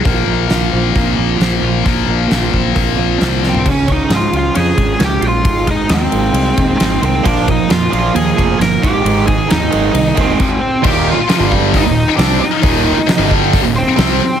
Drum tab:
CC |----------------|----------------|x---------------|----------------|
RD |----------------|----------------|--x-x-x-x-x-x-x-|x-x-x-x-x-x-x-x-|
HH |o---o---o---o---|o---o---o---o---|----------------|----------------|
SD |----o-------o---|----o-------o-o-|----o-------o---|----o-------o---|
FT |----------------|---------------o|----------------|----------------|
BD |o-------o-------|o-----o-o-------|o-o-------o-----|o-o-------o-----|

CC |----------------|------------x---|x---------------|----------------|
RD |x-x-x-x-x-x-x-x-|x-x-x-x-x-x-----|----------------|----------------|
HH |----------------|----------------|----o---o---o---|o---o---o---o---|
SD |----o-------o---|----o-----------|----o-------o---|----o-------o---|
FT |----------------|----------------|----------------|----------------|
BD |o-o-------o---o-|--o-------o-o---|o-----o-o-------|o-----o-o-------|